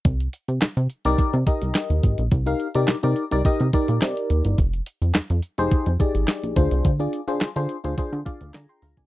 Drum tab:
HH |xxxxxxxxxxxxxxxx|xxxxxxxxxxxxxxxx|xxxxxxxxxxxxxxxx|xxxxxxxxxxxxxxox|
CP |----x-------x---|----x-------x---|----x-------x---|----x-------x---|
SD |----o-------o---|----o-------o---|----o-------o---|----o-------o---|
BD |o-------o-o---o-|o-------o-o-----|o-------o-o---o-|o-------o-o----o|